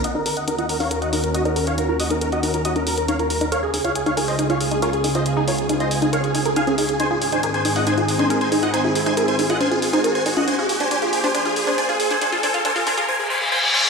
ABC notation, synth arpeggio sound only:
X:1
M:4/4
L:1/16
Q:1/4=138
K:Ebdor
V:1 name="Synth arpeggio sound"
z E B z E F z E B z E F z E B z | E F z E B z E F z E B z E F z E | B z E F z E B z E F z E B z E F | z E B z E F z E B z E B E D E z |
E F z E B z E F E F z E B z E F | E F z E B z E F E F z E B z E F | =D F z D D F z D D F z D D F z D | =D F D F D F D F z8 |]